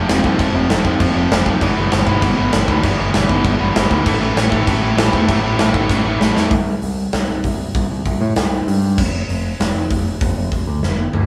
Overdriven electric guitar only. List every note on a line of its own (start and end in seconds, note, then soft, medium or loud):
0.09 0.23 F2 medium
0.09 0.24 C3 medium
0.09 0.24 F3 loud
0.24 0.38 F2 medium
0.24 0.38 C3 medium
0.24 0.38 F3 loud
0.39 0.53 F2 loud
0.39 0.53 C3 loud
0.39 0.54 F3 loud
0.54 0.69 F2 medium
0.54 0.69 C3 medium
0.54 0.68 F3 medium
0.70 0.83 F2 medium
0.70 0.84 C3 medium
0.70 0.85 F3 medium
0.85 0.99 F2 loud
0.85 0.98 C3 loud
0.85 0.98 F3 loud
0.99 1.13 F2 medium
0.99 1.14 C3 medium
0.99 1.14 F3 medium
1.15 1.30 F2 loud
1.15 1.30 C3 loud
1.15 1.29 F3 loud
1.31 1.44 F2 medium
1.31 1.44 C3 medium
1.31 1.45 F3 loud
1.45 1.60 F2 medium
1.45 1.60 C3 medium
1.45 1.60 F3 medium
1.61 1.75 E2 loud
1.61 1.75 B2 loud
1.61 1.75 E3 loud
1.76 1.90 E2 medium
1.76 1.90 B2 medium
1.76 1.91 E3 medium
1.91 2.06 E2 medium
1.91 2.06 B2 medium
1.91 2.06 E3 loud
2.07 2.21 E2 loud
2.07 2.21 B2 loud
2.07 2.23 E3 loud
2.22 2.36 E2 medium
2.22 2.36 B2 medium
2.22 2.36 E3 loud
2.36 2.51 E2 medium
2.36 2.51 B2 loud
2.36 2.52 E3 loud
2.52 2.67 E2 medium
2.52 2.67 B2 loud
2.52 2.67 E3 medium
2.68 2.81 E2 medium
2.68 2.82 B2 medium
2.68 2.83 E3 loud
2.83 2.98 E2 loud
2.83 2.98 B2 loud
2.83 2.98 E3 loud
2.98 3.13 E2 medium
2.98 3.13 B2 medium
2.98 3.14 E3 medium
3.14 3.29 E2 medium
3.14 3.28 B2 medium
3.14 3.29 E3 loud
3.29 3.44 E2 loud
3.29 3.44 B2 loud
3.29 3.45 E3 loud
3.45 3.58 E2 medium
3.45 3.58 B2 medium
3.45 3.58 E3 medium
3.59 3.73 E2 medium
3.59 3.74 B2 loud
3.59 3.75 E3 loud
3.75 3.89 E2 loud
3.75 3.89 B2 loud
3.75 3.89 E3 loud
3.90 4.05 E2 medium
3.90 4.05 B2 medium
3.90 4.05 E3 loud
4.05 4.20 A2 loud
4.05 4.20 E3 loud
4.05 4.19 A3 loud
4.20 4.35 A2 medium
4.20 4.36 E3 medium
4.20 4.36 A3 medium
4.35 4.50 A2 medium
4.35 4.50 E3 loud
4.35 4.49 A3 loud
4.50 4.65 A2 loud
4.50 4.66 E3 loud
4.50 4.66 A3 loud
4.66 4.81 A2 medium
4.66 4.82 E3 medium
4.66 4.81 A3 loud
4.82 4.96 A2 loud
4.82 4.97 E3 medium
4.82 4.96 A3 loud
4.97 5.13 A2 medium
4.97 5.13 E3 loud
4.97 5.12 A3 loud
5.13 5.27 A2 medium
5.13 5.28 E3 loud
5.13 5.28 A3 loud
5.29 5.44 A2 loud
5.29 5.43 E3 loud
5.29 5.42 A3 loud
5.44 5.58 A2 medium
5.44 5.58 E3 medium
5.44 5.58 A3 medium
5.59 5.73 A2 loud
5.59 5.73 E3 medium
5.59 5.72 A3 loud
5.73 5.89 A2 loud
5.73 5.89 E3 loud
5.73 5.89 A3 loud
5.90 6.05 A2 medium
5.90 6.05 E3 medium
5.90 6.04 A3 loud
6.05 6.19 A2 medium
6.05 6.19 E3 medium
6.05 6.19 A3 loud
6.20 6.34 A2 medium
6.20 6.33 E3 loud
6.20 6.33 A3 loud
6.34 6.50 A2 medium
6.34 6.50 E3 medium
6.34 6.49 A3 medium